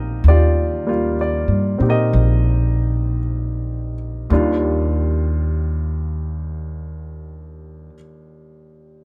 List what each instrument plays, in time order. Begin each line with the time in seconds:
Already playing: upright bass A#1, grand piano G3 A#3 C4 D#4 F4 G4 A#4 D5 D#5 F5
0.24 upright bass D#2
0.28 grand piano F4 G4 D5
0.86 grand piano G3 A#3 F4
1.21 grand piano D5
1.48 upright bass G2
1.78 upright bass A#2, grand piano C4 D#4 G4
1.89 grand piano G4 A#4 D#5
2.13 upright bass A#1
4.30 grand piano D#2 D#3 G3 D4 F4, upright bass D#2